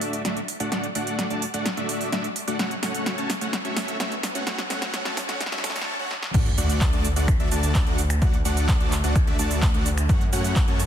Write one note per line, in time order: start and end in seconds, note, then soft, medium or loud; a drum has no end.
0.00 0.22 A3 medium
0.00 0.22 D4 medium
0.00 0.22 F#4 medium
0.00 0.22 D5 medium
0.00 0.22 E5 medium
0.00 open hi-hat loud
0.00 riser medium
0.13 closed hi-hat medium
0.25 0.39 A3 medium
0.25 0.39 D4 medium
0.25 0.39 F#4 medium
0.25 0.39 D5 medium
0.25 0.39 E5 loud
0.25 snare medium
0.25 closed hi-hat medium
0.37 closed hi-hat soft
0.48 open hi-hat loud
0.60 0.70 A3 medium
0.60 0.70 D4 medium
0.60 0.70 F#4 medium
0.60 0.70 D5 medium
0.60 0.70 F#5 medium
0.60 closed hi-hat medium
0.72 0.86 A3 medium
0.72 0.86 D4 medium
0.72 0.86 F#4 medium
0.72 0.86 D5 medium
0.72 0.86 F#5 loud
0.72 snare medium
0.72 closed hi-hat medium
0.84 closed hi-hat soft
0.95 1.28 A3 medium
0.95 1.28 D4 medium
0.95 1.28 F#4 medium
0.95 1.28 D5 medium
0.95 1.28 F#5 loud
0.95 open hi-hat loud
1.07 closed hi-hat medium
1.19 snare medium
1.19 closed hi-hat medium
1.30 1.45 A3 medium
1.30 1.45 D4 medium
1.30 1.45 F#4 medium
1.30 1.45 D5 medium
1.30 1.45 A5 loud
1.30 closed hi-hat soft
1.42 open hi-hat loud
1.54 1.68 A3 medium
1.54 1.68 D4 medium
1.54 1.68 F#4 medium
1.54 1.68 D5 medium
1.54 1.68 F#5 medium
1.54 closed hi-hat soft
1.66 snare medium
1.66 closed hi-hat medium
1.77 2.10 A3 medium
1.77 2.10 D4 medium
1.77 2.10 F#4 medium
1.77 2.10 D5 medium
1.77 2.10 E5 medium
1.77 closed hi-hat soft
1.89 open hi-hat loud
2.01 open hi-hat medium
2.12 2.27 A3 loud
2.12 2.27 D4 medium
2.12 2.27 F#4 medium
2.12 2.27 D5 medium
2.12 2.27 E5 loud
2.12 snare medium
2.12 closed hi-hat medium
2.24 closed hi-hat soft
2.36 open hi-hat loud
2.48 2.58 A3 medium
2.48 2.58 D4 medium
2.48 2.58 F#4 medium
2.48 2.58 D5 medium
2.48 2.58 F#5 medium
2.48 closed hi-hat medium
2.59 2.74 A3 medium
2.59 2.74 C#4 medium
2.59 2.74 F#4 medium
2.59 2.74 C#5 medium
2.59 2.74 F#5 loud
2.59 snare medium
2.59 closed hi-hat soft
2.71 closed hi-hat soft
2.83 3.15 A3 loud
2.83 3.15 C#4 medium
2.83 3.15 F#4 medium
2.83 3.15 C#5 medium
2.83 3.15 F#5 loud
2.83 snare medium
2.83 open hi-hat loud
2.94 closed hi-hat medium
3.06 snare medium
3.06 closed hi-hat soft
3.18 3.32 A3 medium
3.18 3.32 C#4 medium
3.18 3.32 F#4 medium
3.18 3.32 C#5 medium
3.18 3.32 A5 medium
3.18 closed hi-hat soft
3.30 snare medium
3.30 open hi-hat loud
3.41 3.56 A3 medium
3.41 3.56 C#4 medium
3.41 3.56 F#4 medium
3.41 3.56 C#5 medium
3.41 3.56 F#5 medium
3.41 closed hi-hat soft
3.53 snare medium
3.53 closed hi-hat medium
3.65 3.97 A3 medium
3.65 3.97 C#4 medium
3.65 3.97 F#4 medium
3.65 3.97 C#5 medium
3.65 3.97 E5 medium
3.65 closed hi-hat soft
3.77 snare medium
3.77 open hi-hat loud
3.88 closed hi-hat medium
4.00 4.14 A3 loud
4.00 4.14 C#4 medium
4.00 4.14 F#4 medium
4.00 4.14 C#5 medium
4.00 4.14 E5 loud
4.00 snare medium
4.00 closed hi-hat medium
4.12 closed hi-hat soft
4.23 snare medium
4.23 open hi-hat loud
4.35 4.45 A3 medium
4.35 4.45 C#4 medium
4.35 4.45 F#4 medium
4.35 4.45 C#5 medium
4.35 4.45 F#5 medium
4.35 closed hi-hat soft
4.47 4.61 A3 medium
4.47 4.61 C#4 medium
4.47 4.61 F#4 medium
4.47 4.61 C#5 medium
4.47 4.61 F#5 loud
4.47 snare medium
4.47 closed hi-hat medium
4.58 snare medium
4.58 closed hi-hat soft
4.70 5.03 A3 medium
4.70 5.03 C#4 medium
4.70 5.03 F#4 medium
4.70 5.03 C#5 medium
4.70 5.03 F#5 loud
4.70 snare medium
4.70 open hi-hat loud
4.82 snare medium
4.82 closed hi-hat soft
4.94 snare medium
4.94 closed hi-hat medium
5.05 5.20 A3 medium
5.05 5.20 C#4 medium
5.05 5.20 F#4 medium
5.05 5.20 C#5 medium
5.05 5.20 A5 loud
5.05 snare medium
5.05 closed hi-hat soft
5.17 snare loud
5.17 open hi-hat loud
5.29 5.43 A3 medium
5.29 5.43 C#4 medium
5.29 5.43 F#4 medium
5.29 5.43 C#5 medium
5.29 5.43 F#5 medium
5.29 snare medium
5.29 closed hi-hat soft
5.41 snare loud
5.41 closed hi-hat medium
5.46 snare medium
5.52 5.62 A3 medium
5.52 5.62 C#4 medium
5.52 5.62 F#4 medium
5.52 5.62 C#5 medium
5.52 5.62 E5 medium
5.52 snare medium
5.52 closed hi-hat soft
5.58 snare medium
5.64 5.96 A3 medium
5.64 5.96 C#4 medium
5.64 5.96 F#4 medium
5.64 5.96 C#5 medium
5.64 5.96 A5 medium
5.64 snare loud
5.64 open hi-hat loud
5.70 snare loud
5.76 snare medium
5.76 open hi-hat medium
5.81 snare medium
5.99 6.14 A3 medium
5.99 6.14 C#4 medium
5.99 6.14 F#4 medium
5.99 6.14 C#5 medium
5.99 6.14 F#5 medium
6.11 snare medium
6.23 snare medium
6.34 6.55 D2 loud
6.34 6.49 A3 loud
6.34 6.49 D4 medium
6.34 6.49 F#4 medium
6.34 6.49 D5 medium
6.34 6.49 F#5 loud
6.34 kick loud
6.34 closed hi-hat medium
6.34 crash loud
6.34 sub drop medium
6.34 cabasa soft
6.46 closed hi-hat soft
6.58 6.91 D2 loud
6.58 6.90 A3 loud
6.58 6.90 D4 medium
6.58 6.90 F#4 medium
6.58 6.90 D5 medium
6.58 6.90 F#5 loud
6.58 open hi-hat loud
6.58 cabasa medium
6.70 closed hi-hat medium
6.70 cabasa soft
6.81 kick loud
6.81 clap loud
6.81 closed hi-hat medium
6.81 cabasa soft
6.93 7.14 D2 medium
6.93 7.07 A3 medium
6.93 7.07 D4 medium
6.93 7.07 F#4 medium
6.93 7.07 D5 medium
6.93 7.07 A5 loud
6.93 closed hi-hat soft
7.05 open hi-hat loud
7.05 cabasa medium
7.16 7.37 D2 medium
7.16 7.31 A3 medium
7.16 7.31 D4 medium
7.16 7.31 F#4 medium
7.16 7.31 D5 medium
7.16 7.31 F#5 medium
7.16 closed hi-hat medium
7.16 cabasa soft
7.28 finger snap medium
7.28 kick loud
7.28 closed hi-hat medium
7.28 cabasa soft
7.40 7.49 D2 loud
7.40 7.49 A3 medium
7.40 7.49 D4 medium
7.40 7.49 F#4 medium
7.40 7.49 D5 medium
7.40 7.49 E5 medium
7.40 closed hi-hat soft
7.51 7.84 D2 loud
7.51 7.84 A3 medium
7.51 7.84 D4 medium
7.51 7.84 F#4 medium
7.51 7.84 D5 medium
7.51 7.84 A5 loud
7.51 open hi-hat loud
7.51 cabasa medium
7.63 closed hi-hat medium
7.63 cabasa soft
7.75 kick loud
7.75 clap loud
7.75 closed hi-hat medium
7.75 cabasa soft
7.87 8.19 D2 loud
7.87 8.01 A3 medium
7.87 8.01 D4 medium
7.87 8.01 F#4 medium
7.87 8.01 D5 medium
7.87 8.01 F#5 medium
7.87 closed hi-hat soft
7.98 open hi-hat loud
7.98 cabasa medium
8.10 finger snap medium
8.10 closed hi-hat medium
8.10 cabasa soft
8.22 8.43 D2 loud
8.22 8.36 A3 loud
8.22 8.36 D4 medium
8.22 8.36 F#4 medium
8.22 8.36 D5 medium
8.22 8.36 F#5 loud
8.22 kick loud
8.22 closed hi-hat medium
8.22 cabasa soft
8.34 closed hi-hat soft
8.45 8.78 D2 loud
8.45 8.78 A3 medium
8.45 8.78 D4 medium
8.45 8.78 F#4 medium
8.45 8.78 D5 medium
8.45 8.78 F#5 loud
8.45 open hi-hat loud
8.45 cabasa medium
8.57 closed hi-hat medium
8.57 cabasa soft
8.69 kick loud
8.69 clap loud
8.69 closed hi-hat medium
8.69 cabasa soft
8.80 9.02 D2 medium
8.80 8.95 A3 medium
8.80 8.95 D4 medium
8.80 8.95 F#4 medium
8.80 8.95 D5 medium
8.80 8.95 A5 medium
8.80 closed hi-hat soft
8.92 clap medium
8.92 open hi-hat loud
8.92 cabasa medium
9.04 9.25 D2 loud
9.04 9.18 A3 medium
9.04 9.18 D4 medium
9.04 9.18 F#4 medium
9.04 9.18 D5 medium
9.04 9.18 F#5 medium
9.04 closed hi-hat medium
9.04 cabasa soft
9.16 finger snap medium
9.16 kick loud
9.16 closed hi-hat medium
9.16 cabasa soft
9.27 9.37 D2 loud
9.27 9.37 A3 medium
9.27 9.37 D4 medium
9.27 9.37 F#4 medium
9.27 9.37 D5 medium
9.27 9.37 E5 medium
9.27 closed hi-hat soft
9.39 9.72 D2 loud
9.39 9.71 A3 medium
9.39 9.71 D4 medium
9.39 9.71 F#4 medium
9.39 9.71 D5 medium
9.39 9.71 A5 medium
9.39 open hi-hat loud
9.39 cabasa medium
9.51 open hi-hat medium
9.51 cabasa soft
9.62 kick loud
9.62 clap loud
9.62 closed hi-hat medium
9.62 cabasa soft
9.74 10.07 D2 loud
9.74 9.89 A3 medium
9.74 9.89 D4 medium
9.74 9.89 F#4 medium
9.74 9.89 D5 medium
9.74 9.89 F#5 medium
9.74 closed hi-hat soft
9.86 open hi-hat loud
9.86 cabasa medium
9.98 finger snap medium
9.98 closed hi-hat medium
9.98 cabasa soft
10.09 10.30 F#2 loud
10.09 10.24 A3 loud
10.09 10.24 C#4 medium
10.09 10.24 F#4 medium
10.09 10.24 C#5 medium
10.09 10.24 F#5 loud
10.09 kick loud
10.09 closed hi-hat medium
10.09 cabasa soft
10.21 closed hi-hat soft
10.33 10.66 F#2 loud
10.33 10.65 A3 loud
10.33 10.65 C#4 medium
10.33 10.65 F#4 medium
10.33 10.65 C#5 medium
10.33 10.65 F#5 loud
10.33 open hi-hat loud
10.33 cabasa medium
10.44 closed hi-hat medium
10.44 cabasa soft
10.56 kick loud
10.56 clap loud
10.56 closed hi-hat soft
10.56 cabasa soft
10.68 10.86 F#2 medium
10.68 10.82 A3 medium
10.68 10.82 C#4 medium
10.68 10.82 F#4 medium
10.68 10.82 C#5 medium
10.68 10.82 A5 medium
10.68 closed hi-hat soft
10.80 open hi-hat loud
10.80 cabasa medium